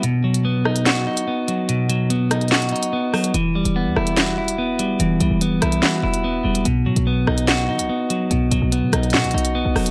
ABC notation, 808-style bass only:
X:1
M:4/4
L:1/16
Q:1/4=145
K:Bphr
V:1 name="808-style bass" clef=bass
z16 | z16 | E,,,3 ^D,,,2 E,, E,,,8- E,,,2 | E,,,2 B,,, E,,,3 B,,,2 z2 E,,,4 E,,,2 |
B,,,2 B,, B,,,3 B,,,4 ^D, B,,, z4 | B,,,2 B,,, B,,,2 ^D, B,,,2 B,, B,,, B,,,3 B,,, E,,,2 |]